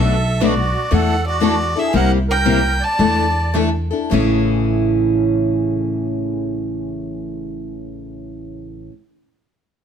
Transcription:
0.00 0.72 B1 medium
0.00 0.14 B2 medium
0.00 0.14 F#3 medium
0.00 0.14 A3 medium
0.00 0.14 D4 medium
0.00 0.14 F#4 medium
0.00 0.41 A4 medium
0.00 0.15 B4 medium
0.00 0.46 E5 medium
0.41 0.53 B2 medium
0.41 0.53 F#3 medium
0.41 0.53 A3 medium
0.41 0.54 D4 medium
0.41 0.54 F#4 medium
0.41 0.92 F#4 medium
0.41 0.53 B4 medium
0.41 0.96 D5 medium
0.91 1.73 E2 medium
0.91 1.14 E3 medium
0.91 1.14 A3 medium
0.91 1.14 D4 medium
0.91 1.14 E4 medium
0.91 1.14 A4 medium
0.91 1.25 A4 medium
0.91 1.26 F#5 medium
1.27 1.73 F#4 medium
1.27 1.80 D5 medium
1.40 1.53 E3 medium
1.40 1.53 A3 medium
1.40 1.53 D4 medium
1.40 1.54 E4 medium
1.40 1.54 A4 medium
1.76 1.93 D4 soft
1.76 1.92 E4 soft
1.76 1.94 G#4 medium
1.76 1.93 A4 medium
1.76 1.95 E5 medium
1.93 2.79 C2 medium
1.93 2.17 C3 medium
1.93 2.17 G3 medium
1.93 2.17 A#3 medium
1.93 2.17 E4 medium
1.93 2.17 G4 medium
1.93 2.10 A#4 medium
1.93 2.11 F#5 medium
2.28 2.78 A#4 medium
2.28 2.85 G5 medium
2.45 2.58 C3 medium
2.45 2.58 G3 medium
2.45 2.59 A#3 medium
2.45 2.58 E4 medium
2.45 2.59 G4 medium
2.81 3.55 D5 medium
2.81 3.57 A5 loud
2.98 3.89 E2 medium
2.98 3.24 E3 medium
2.98 3.24 A3 medium
2.98 3.24 D4 medium
2.98 3.25 E4 medium
2.98 3.25 A4 medium
3.55 3.69 E3 medium
3.55 3.69 A3 medium
3.55 3.69 D4 medium
3.55 3.69 E4 medium
3.55 3.69 A4 medium
3.91 4.11 D4 soft
3.91 4.11 E4 soft
3.91 4.11 A4 medium
4.10 8.87 A1 medium
4.10 8.89 A2 medium
4.10 8.91 C#3 medium
4.10 8.91 E3 medium
4.10 8.92 A3 medium
4.10 8.92 C#4 medium
4.10 8.93 E4 medium
4.10 8.93 G#4 medium

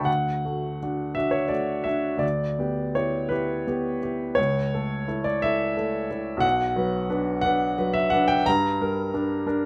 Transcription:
0.01 2.15 D2 medium
0.05 1.16 F#5 medium
0.45 0.78 A3 soft
0.45 0.78 F#4 soft
0.83 1.14 D4 soft
0.83 1.14 F#4 soft
1.15 1.49 D4 soft
1.15 1.49 F#4 soft
1.15 1.34 E5 medium
1.31 1.51 C#5 medium
1.48 1.83 A3 soft
1.48 1.83 F#4 soft
1.48 1.85 D5 medium
1.84 2.19 D4 soft
1.84 2.19 F#4 soft
1.84 2.21 E5 medium
2.17 4.31 D2 medium
2.17 2.95 D5 medium
2.59 2.92 B3 soft
2.59 2.93 G4 soft
2.95 3.29 E4 soft
2.95 3.29 G4 soft
2.95 3.32 C#5 medium
3.29 3.63 E4 soft
3.29 3.63 G4 soft
3.29 3.65 B4 medium
3.67 3.98 B3 soft
3.67 3.99 G4 soft
4.03 4.35 E4 soft
4.03 4.35 G4 soft
4.35 6.40 C#2 medium
4.35 5.25 C#5 medium
4.74 5.06 A3 soft
4.74 5.06 A4 medium
5.08 5.39 E4 soft
5.08 5.39 A4 soft
5.24 5.42 D5 medium
5.42 5.75 E4 soft
5.42 5.75 A4 medium
5.42 6.44 E5 medium
5.77 6.07 A3 soft
5.77 6.07 A4 medium
6.11 6.41 E4 soft
6.11 6.41 A4 medium
6.37 8.39 B1 medium
6.37 7.40 F#5 loud
6.76 7.06 F#3 medium
6.76 7.07 B4 medium
7.10 7.40 D4 soft
7.10 7.40 B4 medium
7.41 7.75 D4 medium
7.41 7.75 B4 medium
7.41 7.94 F#5 loud
7.78 8.09 F#3 soft
7.78 8.09 B4 medium
7.94 8.11 E5 medium
8.10 8.43 D4 medium
8.10 8.44 B4 medium
8.10 8.28 F#5 medium
8.28 8.45 G5 medium
8.46 9.65 G2 medium
8.46 9.65 A#5 loud
8.81 9.11 G3 medium
8.81 9.11 A#4 medium
9.14 9.44 D4 medium
9.14 9.44 A#4 medium
9.46 9.65 D4 medium
9.46 9.65 A#4 medium

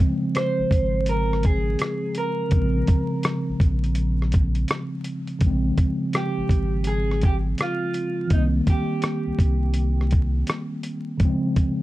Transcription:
0.00 2.47 C#3 medium
0.00 2.48 F3 medium
0.00 2.49 G#3 medium
0.00 2.51 C4 medium
0.35 1.09 C5 loud
0.35 cross-stick loud
0.35 closed hi-hat medium
0.59 0.64 G#1 soft
0.71 1.76 G#1 medium
0.71 kick medium
0.71 closed hi-hat medium
1.06 1.45 A#4 loud
1.06 closed hi-hat medium
1.33 cross-stick soft
1.43 2.17 G#4 medium
1.43 kick medium
1.43 closed hi-hat medium
1.79 cross-stick loud
1.79 closed hi-hat medium
2.15 4.66 A#4 medium
2.15 closed hi-hat medium
2.49 2.83 A#1 loud
2.49 5.36 C#3 medium
2.49 5.37 F3 medium
2.49 kick loud
2.49 closed hi-hat medium
2.54 5.39 G#3 medium
2.54 5.40 C4 medium
2.87 kick loud
2.87 closed hi-hat medium
3.23 cross-stick loud
3.23 closed hi-hat medium
3.49 3.54 A#1 soft
3.60 4.65 A#1 medium
3.60 kick loud
3.60 closed hi-hat medium
3.84 closed hi-hat soft
3.95 closed hi-hat medium
4.22 cross-stick soft
4.32 kick medium
4.32 closed hi-hat medium
4.55 closed hi-hat soft
4.68 cross-stick loud
4.68 closed hi-hat medium
5.04 closed hi-hat medium
5.27 closed hi-hat soft
5.39 5.72 A#1 loud
5.39 8.26 C#3 medium
5.39 8.27 F3 medium
5.39 kick loud
5.39 closed hi-hat medium
5.44 8.28 G#3 medium
5.44 8.29 C4 medium
5.78 kick medium
5.78 closed hi-hat medium
6.13 6.83 G4 medium
6.13 cross-stick loud
6.13 closed hi-hat medium
6.38 6.43 G#1 soft
6.49 7.55 G#1 medium
6.49 kick medium
6.49 closed hi-hat medium
6.84 7.24 G#4 loud
6.84 closed hi-hat medium
7.11 cross-stick soft
7.21 7.34 G4 medium
7.21 kick medium
7.21 closed hi-hat medium
7.58 8.32 F4 medium
7.58 cross-stick loud
7.58 closed hi-hat medium
7.94 closed hi-hat medium
8.27 11.14 D#3 medium
8.27 11.15 G3 medium
8.27 kick loud
8.27 closed hi-hat medium
8.31 8.61 C2 loud
8.31 11.17 A#3 medium
8.31 11.18 C4 medium
8.31 8.42 D#4 medium
8.67 10.09 G4 medium
8.67 kick medium
8.67 closed hi-hat medium
9.02 cross-stick loud
9.02 closed hi-hat medium
9.27 9.32 C2 soft
9.39 10.44 C2 medium
9.39 kick medium
9.39 closed hi-hat medium
9.74 closed hi-hat medium
10.01 cross-stick soft
10.11 kick medium
10.11 closed hi-hat medium
10.47 cross-stick loud
10.47 closed hi-hat medium
10.83 closed hi-hat medium
11.17 11.83 C#3 medium
11.17 11.83 F3 medium
11.17 kick loud
11.17 closed hi-hat medium
11.23 11.83 G#3 medium
11.23 11.83 C4 medium
11.56 kick medium
11.56 closed hi-hat medium

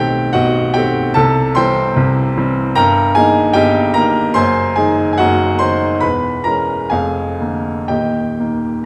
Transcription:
0.00 0.35 B1 medium
0.00 0.35 B2 medium
0.00 0.31 D#3 medium
0.00 0.31 A3 medium
0.00 0.31 C4 medium
0.00 0.31 G4 medium
0.00 1.15 A4 medium
0.00 0.33 F#5 medium
0.00 0.34 G5 medium
0.00 1.14 A5 medium
0.33 0.74 B1 medium
0.33 0.75 B2 medium
0.33 0.72 F#4 medium
0.33 0.72 D#5 medium
0.33 0.75 F#5 medium
0.74 1.12 D#3 medium
0.74 1.12 A3 medium
0.74 1.13 C4 medium
0.74 1.13 G4 medium
0.74 1.15 G5 medium
1.14 1.55 C2 medium
1.14 1.55 C3 medium
1.14 1.53 A4 medium
1.14 1.56 A5 loud
1.55 1.93 E3 medium
1.55 1.94 G3 medium
1.55 1.94 C4 medium
1.55 2.33 C5 medium
1.55 2.33 G5 medium
1.55 2.37 C6 loud
1.96 2.36 C2 medium
1.96 2.36 C3 medium
2.37 2.73 E3 medium
2.37 2.73 G3 medium
2.37 2.73 C4 medium
2.75 3.15 G1 medium
2.75 3.15 G2 medium
2.75 3.13 A#4 medium
2.75 3.13 G5 medium
2.75 3.15 A#5 loud
3.15 3.52 D#3 medium
3.15 3.52 A#3 medium
3.15 3.52 D#4 medium
3.15 3.53 G#4 medium
3.15 3.55 G#5 loud
3.53 3.94 G1 medium
3.53 3.95 G2 medium
3.53 3.93 G4 medium
3.53 3.93 D#5 medium
3.53 3.95 G5 loud
3.94 4.32 D#3 medium
3.94 4.33 A#3 medium
3.94 4.33 D#4 medium
3.94 4.33 A#4 medium
3.94 4.35 A#5 loud
4.34 4.76 F#1 medium
4.34 4.76 F#2 medium
4.34 4.74 C5 medium
4.34 4.74 G#5 medium
4.34 4.77 C6 loud
4.76 5.16 D#3 medium
4.76 5.16 G#3 medium
4.76 5.16 D#4 medium
4.76 5.10 G#4 medium
4.76 5.11 G#5 medium
5.13 5.20 G#5 medium
5.18 5.60 F#1 medium
5.18 5.60 F#2 medium
5.18 5.58 F#4 medium
5.18 5.58 D#5 medium
5.18 5.60 F#5 loud
5.59 5.99 D#3 soft
5.59 5.99 G#3 medium
5.59 5.99 D#4 medium
5.59 5.99 C5 medium
5.59 6.02 C6 loud
6.00 6.44 E1 medium
6.00 6.45 E2 medium
6.00 6.42 B4 medium
6.00 6.45 B5 medium
6.44 6.88 E3 soft
6.44 6.88 G#3 soft
6.44 6.88 C#4 medium
6.44 6.88 A#4 medium
6.44 6.91 A#5 medium
6.90 7.39 F1 medium
6.90 7.39 F2 medium
6.90 7.86 G#4 medium
6.90 7.86 F5 medium
6.90 7.89 G#5 medium
7.40 7.86 D3 soft
7.40 7.86 A#3 soft
7.88 8.37 D#1 soft
7.88 8.37 D#2 medium
7.88 8.85 G4 medium
7.88 8.85 D#5 medium
7.88 8.84 G5 medium
8.39 8.82 D#3 soft
8.39 8.82 A#3 soft

